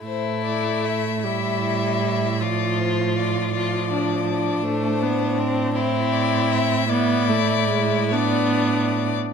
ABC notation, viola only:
X:1
M:6/8
L:1/16
Q:3/8=52
K:Am
V:1 name="Viola"
A,6 G,6 | F,6 F,6 | A,2 B,2 C2 C6 | B,2 A,2 ^G,2 B,4- B, z |]